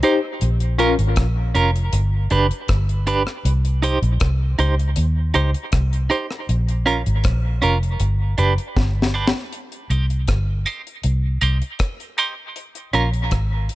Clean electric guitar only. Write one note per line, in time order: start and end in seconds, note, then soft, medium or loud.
0.03 0.18 D#4 medium
0.03 0.18 G4 medium
0.03 0.19 C5 medium
0.79 0.94 C#4 medium
0.79 0.94 F4 medium
0.79 0.94 A#4 medium
1.55 1.70 C#4 medium
1.55 1.70 F4 medium
1.55 1.70 A#4 medium
2.31 2.46 D4 medium
2.31 2.46 G4 medium
2.31 2.46 B4 medium
3.07 3.22 D4 medium
3.07 3.22 G4 loud
3.07 3.22 B4 loud
3.82 3.97 D#4 medium
3.82 3.98 G4 medium
3.82 3.98 C5 medium
4.59 4.73 D#4 medium
4.59 4.74 G4 medium
4.59 4.74 C5 medium
5.34 5.49 D#4 medium
5.34 5.49 G4 medium
5.34 5.50 C5 medium
6.10 6.25 D#4 medium
6.10 6.25 G4 medium
6.10 6.26 C5 medium
6.86 7.01 C#4 medium
6.86 7.01 F4 medium
6.86 7.01 A#4 medium
7.62 7.77 C#4 medium
7.62 7.77 F4 medium
7.62 7.78 A#4 medium
8.38 8.53 D4 medium
8.38 8.53 G4 medium
8.38 8.53 B4 medium
9.14 9.29 D4 medium
9.14 9.29 G4 medium
9.14 9.29 B4 medium
9.90 10.05 D#4 medium
9.90 10.05 G4 medium
9.90 10.05 C5 medium
10.66 10.81 D#4 medium
10.66 10.81 G4 medium
10.66 10.81 C5 medium
11.41 11.56 D#4 medium
11.41 11.57 G4 medium
11.41 11.57 C5 medium
12.18 12.33 D#4 medium
12.18 12.33 G4 medium
12.18 12.33 C5 medium
12.93 13.08 C#4 medium
12.93 13.09 F4 medium
12.93 13.09 A#4 medium